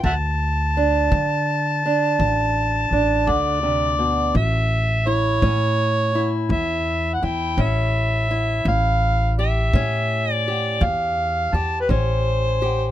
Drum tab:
BD |o--o--o--o--|o--o--o--o--|o--o--o--o--|